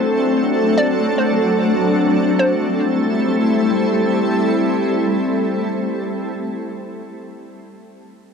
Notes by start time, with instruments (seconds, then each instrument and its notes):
Already playing: ambient pad F#3 A3 C4 D4 A4, synth pluck C5
0.78 synth pluck D5
1.18 synth pluck C5
2.39 ambient pad G3 A3 C4 E4 A4, synth pluck C5